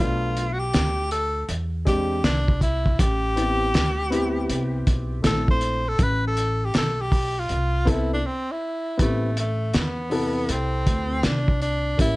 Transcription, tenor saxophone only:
0.00 F4
0.53 F#4
0.59 G4
1.12 A4
1.87 G4
2.25 D4
2.63 E4
3.00 G4
5.26 A4
5.51 C5
5.88 A4
6.03 B4
6.27 A4
6.65 G4
6.78 A4
7.01 G4
7.39 F4
7.90 E4
8.13 D4
8.26 C4
8.51 E4
9.02 A3
9.39 A3
9.76 B3
10.51 C4
11.25 D4
11.62 D4
12.01 E4

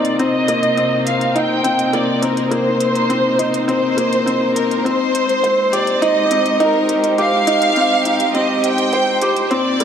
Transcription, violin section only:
Already playing: D5
0.20 D#5
1.07 F5
1.37 G5
1.94 D5
2.23 A#4
2.52 C5
3.69 C5
4.56 A#4
4.85 C5
5.74 D5
6.02 D#5
6.60 A#4
7.19 F5
8.35 D#5
8.64 G5
9.22 C5
9.52 D5

